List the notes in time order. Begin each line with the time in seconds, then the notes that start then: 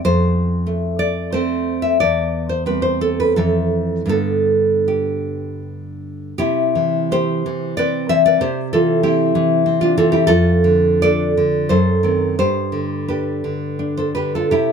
0.05 F2 C5
0.67 A3
0.99 D5
1.32 A3 C4 C5
1.82 E5
2.00 E2 D5
2.49 C5
2.66 G3 C4 B4
2.82 C5
3.01 A4
3.20 B4
3.36 F2 E3 C4 A4
4.06 G2 D3 B3 A4
4.88 G4
6.38 C3 E4 G4
6.75 E3
7.12 C4 G4 C5
7.46 E3
7.77 C4 B4 D5
8.09 E3 C5 E5
8.26 B4 D5
8.41 C3 G4 C5
8.73 E3 F4 A4
9.03 C4 E4 G4
9.35 E3
9.66 C4
9.81 D4 F4
9.97 E3 F4 A4
10.12 E4 G4
10.27 F2 F4 A4
10.64 D3
11.02 D4 A4 D5
11.37 D3
11.69 F#2 A4 C5
12.03 D#3 C4
12.39 G2 G4 C5
12.72 D3
13.08 D4 G4 B4
13.44 D3
13.79 D4
13.97 A4 C5
14.15 D3 G4 B4
14.35 F4 A4
14.51 C3 E4 G4